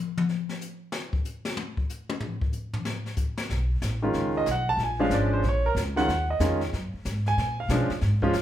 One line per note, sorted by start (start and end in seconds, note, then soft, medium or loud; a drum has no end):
0.17 mid tom medium
0.29 snare soft
0.49 snare soft
0.61 hi-hat pedal medium
0.92 snare loud
1.13 kick medium
1.25 hi-hat pedal medium
1.45 snare medium
1.57 high tom medium
1.77 kick medium
1.90 hi-hat pedal medium
2.09 high tom medium
2.20 floor tom medium
2.41 kick medium
2.53 hi-hat pedal medium
2.73 floor tom loud
2.85 snare medium
3.06 snare soft
3.17 kick medium
3.17 hi-hat pedal medium
3.37 snare medium
3.50 3.81 B1 medium
3.50 brush sweep soft
3.50 snare soft
3.82 4.14 A1 medium
3.82 snare medium
3.82 hi-hat pedal medium
4.02 4.44 D#3 medium
4.02 4.45 G#3 medium
4.02 4.45 C#4 medium
4.02 4.45 F4 medium
4.13 4.46 C#2 medium
4.13 brush sweep soft
4.13 snare soft
4.37 4.48 D#5 medium
4.46 4.76 B1 medium
4.46 snare medium
4.46 hi-hat pedal medium
4.51 4.69 F#5 medium
4.69 4.80 A5 loud
4.77 5.09 A#1 medium
4.77 brush sweep medium
4.77 snare soft
4.83 5.01 G#5 medium
5.00 5.41 F3 medium
5.00 5.42 G#3 medium
5.00 5.42 C#4 medium
5.00 5.42 D4 medium
5.00 5.12 F5 medium
5.10 5.42 G#1 medium
5.10 snare medium
5.10 hi-hat pedal medium
5.14 5.33 D5 medium
5.33 5.44 C5 medium
5.43 5.74 A#1 medium
5.43 brush sweep soft
5.43 snare soft
5.49 5.67 C#5 medium
5.66 5.73 A#4 loud
5.75 6.07 C#2 medium
5.75 snare medium
5.75 hi-hat pedal medium
5.96 6.07 D#3 medium
5.96 6.07 G#3 medium
5.96 6.07 C#4 medium
5.96 6.07 F4 medium
5.96 6.27 F#5 loud
5.96 snare soft
6.08 6.39 D#2 medium
6.08 brush sweep medium
6.08 snare soft
6.30 6.60 D#5 medium
6.39 6.71 F2 medium
6.39 6.59 D#3 medium
6.39 6.59 G#3 medium
6.39 6.59 C#4 medium
6.39 6.60 F4 medium
6.39 snare medium
6.39 hi-hat pedal medium
6.61 snare soft
6.73 6.92 F#2 medium
6.73 brush sweep soft
6.73 snare soft
6.93 muted upright bass stroke soft
7.05 7.37 G#2 medium
7.05 snare medium
7.05 hi-hat pedal medium
7.26 7.57 G#5 loud
7.26 snare soft
7.37 7.68 A#2 medium
7.37 brush sweep medium
7.37 snare soft
7.60 7.89 F5 medium
7.69 7.88 B2 medium
7.69 7.89 F3 medium
7.69 7.89 G#3 medium
7.69 7.89 C#4 medium
7.69 7.89 D4 medium
7.69 snare medium
7.69 hi-hat pedal medium
7.90 muted upright bass stroke soft
7.90 snare soft
8.01 8.33 G#2 medium
8.01 brush sweep medium
8.01 snare soft
8.22 8.33 F3 medium
8.22 8.33 G#3 medium
8.22 8.33 C#4 medium
8.22 8.33 F4 loud
8.22 kick medium
8.33 8.42 F2 medium
8.33 snare medium
8.33 hi-hat pedal medium